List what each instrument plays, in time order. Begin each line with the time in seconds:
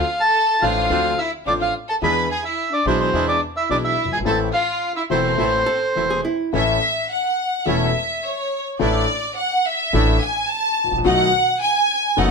Already playing: violin section F4, bandoneon F5
0.20 violin section A4, bandoneon A5
0.62 grand piano A1 A2 F3 C4 D4 A4, upright bass A1, bandoneon C4 D4 F4 F5, violin section F4
0.90 grand piano D2 D3 F3 C4 D4 A4, upright bass D2, bandoneon C4 D4 F4
1.18 violin section E4, bandoneon E5
1.46 upright bass A1, grand piano A1 A2 F3 C4 D4 A4, bandoneon C4 D4 F4 D5, violin section D4
1.60 violin section F4, bandoneon F5
1.89 violin section A4, bandoneon A5
2.02 upright bass E2, grand piano E2 E3 B3 D4 G#4, bandoneon G#3 D4 E4 B5, violin section B4
2.31 violin section G#4, bandoneon G#5
2.45 violin section E4, bandoneon E5
2.72 violin section D4, bandoneon D5
2.86 upright bass B1, grand piano B1 B2 E3 B3 D4 G#4, bandoneon G#3 D4 E4 C5, violin section C4
3.00 violin section C4, bandoneon C5
3.13 upright bass E2, grand piano E2 E3 B3 D4 G#4, bandoneon G#3 D4 E4
3.28 violin section D4, bandoneon D5
3.56 violin section E4, bandoneon E5
3.69 grand piano B1 B2 E3 B3 D4 G#4, upright bass B1, bandoneon G#3 D4 E4 D5, violin section D4
3.85 violin section E4, bandoneon E5
4.05 upright bass F#1, grand piano F#1
4.12 grand piano G1, upright bass G1, violin section G#4, bandoneon G#5
4.19 grand piano G#1, upright bass G#1
4.25 grand piano A1 A2 E3 A3 C4 A4, upright bass A1, bandoneon A3 C4 E4 A5, violin section A4
4.53 violin section F4, bandoneon F5
4.96 violin section E4, bandoneon E5
5.10 grand piano E1 E2 E3 A3 C4 A4, upright bass E1, bandoneon A3 C4 E4 C5, violin section C4
5.38 grand piano A1 A2 E3 A3 C4 A4, upright bass A1, bandoneon A3 C4 E4
5.66 hollow-body jazz guitar A4
5.95 grand piano E1 E2 E3 A3 C4 A4, upright bass E1, bandoneon A3 C4 E4
6.10 hollow-body jazz guitar G#4
6.25 hollow-body jazz guitar E4
6.53 grand piano A1 A2 E3 A3 C#4 A4, upright bass A1, bandoneon A3 C#4 E4, violin section E5
7.11 violin section F#5
7.65 grand piano E1 E2 E3 A3 C#4 A4, upright bass E1, bandoneon A3 C#4 E4, violin section E5
8.24 violin section C#5
8.79 grand piano A1 A2 E3 A3 D4 A4, upright bass A1, bandoneon A3 D4 E4, violin section D5
9.38 violin section F#5
9.66 violin section E5
9.93 grand piano A1 A2 E3 A3 D4 A4, upright bass A1, bandoneon A3 D4 E4
10.22 violin section G#5
10.49 violin section A5
10.84 grand piano G#1, upright bass G#1
10.92 grand piano A1, upright bass A1
10.98 grand piano A#1, upright bass A#1
11.04 grand piano B1 B2 D#3 A3 B3 F#4, upright bass B1, bandoneon A3 B3 D#4, violin section F#5
11.61 violin section G#5
12.16 grand piano F#1 F#2 D#3 A3 B3 F#4, upright bass F#1, bandoneon A3 B3 D#4, violin section F#5